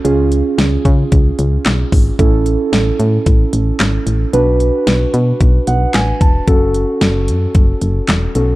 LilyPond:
<<
  \new Staff \with { instrumentName = "Synth keys" } { \time 4/4 \key a \major \tempo 4 = 112 << { r1 | r1 | r2 r8 fis''8 gis''8 a''8 | r1 | } \\ { <cis' eis' gis'>1 | <cis' e' a'>1 | <d' fis' b'>1 | <cis' fis' a'>2.~ <cis' fis' a'>8 <cis' fis' a'>8 | } >> }
  \new Staff \with { instrumentName = "FM bass" } { \clef bass \time 4/4 \key a \major cis,4 cis,8 cis8 cis,8 cis,8 b,,8 gis,,8 | a,,4 a,,8 a,8 a,,8 a,,8 gis,,8 a,,8 | b,,4 b,,8 b,8 b,,8 b,,8 a,,8 e,,8 | fis,,4 fis,,8 fis,8 fis,,8 fis,,8 e,,8 b,,8 | }
  \new DrumStaff \with { instrumentName = "Drums" } \drummode { \time 4/4 hh8 hh8 <hh sn>8 <hh bd>8 <hh bd>8 hh8 <hc hh sn>8 <hho bd>8 | <hh bd>8 hh8 <hh sn>8 hh8 <hh bd>8 hh8 <hc hh sn>8 hh8 | hh8 hh8 <hh sn>8 hh8 <hh bd>8 hh8 <hc hh sn>8 <hh bd>8 | <hh bd>8 hh8 <hh sn>8 hh8 <hh bd>8 hh8 <hc hh sn>8 hh8 | }
>>